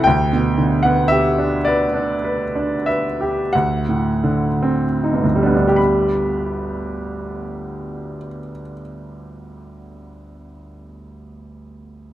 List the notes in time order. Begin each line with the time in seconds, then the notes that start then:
0.04 D2 G5
0.33 B2
0.58 D3
0.83 B3 F#5
1.08 G4 E5
1.38 D4
1.65 B4 D5
1.94 D4
2.24 B4
2.56 D4
2.86 B4 E5
3.21 G4
3.53 D2 F#5
3.89 A2
4.24 D3
4.62 C4
5.03 D#4
5.13 G1
5.24 D2
5.35 G3
5.43 B3 D4
5.57 D4
5.68 G4
5.76 B5